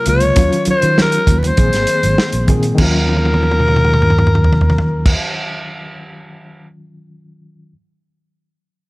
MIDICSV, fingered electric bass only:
0, 0, Header, 1, 3, 480
1, 0, Start_track
1, 0, Tempo, 606061
1, 287, Time_signature, 4, 2, 24, 8
1, 7047, End_track
2, 0, Start_track
2, 0, Title_t, "Fingered electric bass"
2, 0, Program_c, 0, 33
2, 58, Note_on_c, 0, 37, 78
2, 236, Note_off_c, 0, 37, 0
2, 293, Note_on_c, 0, 39, 103
2, 382, Note_off_c, 0, 39, 0
2, 657, Note_on_c, 0, 51, 88
2, 927, Note_off_c, 0, 51, 0
2, 1008, Note_on_c, 0, 39, 88
2, 1190, Note_off_c, 0, 39, 0
2, 1252, Note_on_c, 0, 34, 97
2, 1341, Note_off_c, 0, 34, 0
2, 1374, Note_on_c, 0, 32, 67
2, 1463, Note_off_c, 0, 32, 0
2, 1610, Note_on_c, 0, 32, 77
2, 1700, Note_off_c, 0, 32, 0
2, 1846, Note_on_c, 0, 34, 76
2, 1938, Note_off_c, 0, 34, 0
2, 1966, Note_on_c, 0, 46, 84
2, 2149, Note_off_c, 0, 46, 0
2, 2205, Note_on_c, 0, 39, 92
2, 4070, Note_off_c, 0, 39, 0
2, 7047, End_track
3, 0, Start_track
3, 0, Title_t, "Muted fingered electric bass strokes"
3, 537, Note_on_c, 9, 29, 36
3, 616, Note_off_c, 9, 29, 0
3, 1731, Note_on_c, 9, 29, 47
3, 1810, Note_off_c, 9, 29, 0
3, 7047, End_track
0, 0, End_of_file